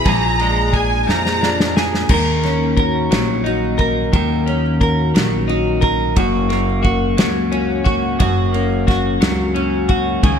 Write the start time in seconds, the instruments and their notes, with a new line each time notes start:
Already playing: clean electric guitar E3 B3 E4, steel-string acoustic guitar B3 E4 G#4
0.05 upright bass A#1, clean electric guitar A#2 G#4, steel-string acoustic guitar F3, violin section A#5, kick, ride
0.39 clean electric guitar G#3, steel-string acoustic guitar D4, ride
0.73 clean electric guitar G#4, steel-string acoustic guitar G#4, violin section G#5, kick, ride
1.07 upright bass F2, clean electric guitar F3, steel-string acoustic guitar A#3, violin section A#5, snare
1.26 snare
1.41 clean electric guitar D4, steel-string acoustic guitar G#4, snare
1.60 snare
1.77 steel-string acoustic guitar A#3, clean electric guitar G#4, snare
1.94 snare
2.09 upright bass D#2, clean electric guitar D#3 A#4, steel-string acoustic guitar A#3, kick, crash
2.43 clean electric guitar C#4, steel-string acoustic guitar C#4, snare, ride
2.77 steel-string acoustic guitar F#4, clean electric guitar A#4, kick, ride
3.11 upright bass A#1, clean electric guitar F#3, steel-string acoustic guitar A#3, snare, ride
3.44 clean electric guitar D#4, steel-string acoustic guitar F#4, ride
3.78 steel-string acoustic guitar A#3, clean electric guitar A#4, kick, ride
4.13 upright bass D#2, clean electric guitar D#3 A#4, steel-string acoustic guitar A#3, kick, ride
4.46 clean electric guitar C#4, steel-string acoustic guitar C#4, ride
4.81 steel-string acoustic guitar F#4, clean electric guitar A#4, kick, ride
5.14 upright bass A#1, clean electric guitar F#3, steel-string acoustic guitar A#3, snare, ride
5.48 clean electric guitar D#4, steel-string acoustic guitar F#4, ride
5.81 steel-string acoustic guitar A#3, clean electric guitar A#4, kick, ride
6.16 upright bass F#1, clean electric guitar F#2 F#4, steel-string acoustic guitar A#3, kick, ride
6.49 clean electric guitar A#3, steel-string acoustic guitar C#4, snare, ride
6.83 clean electric guitar F#4, steel-string acoustic guitar F#4, kick, ride
7.17 upright bass C#2, clean electric guitar F#3, steel-string acoustic guitar A#3, snare, ride
7.52 clean electric guitar C#4, steel-string acoustic guitar F#4, ride
7.84 steel-string acoustic guitar A#3, clean electric guitar F#4, kick, ride
8.19 upright bass F#1, clean electric guitar F#2 F#4, steel-string acoustic guitar A#3, kick, ride
8.53 clean electric guitar A#3, steel-string acoustic guitar C#4, ride
8.87 clean electric guitar F#4, steel-string acoustic guitar F#4, kick, snare, ride
9.21 upright bass C#2, clean electric guitar F#3, steel-string acoustic guitar A#3, snare, ride
9.54 clean electric guitar C#4, steel-string acoustic guitar F#4, ride
9.89 steel-string acoustic guitar A#3, clean electric guitar F#4, kick, ride
10.23 upright bass C#2, clean electric guitar C#3 G#4, steel-string acoustic guitar D#3, kick, ride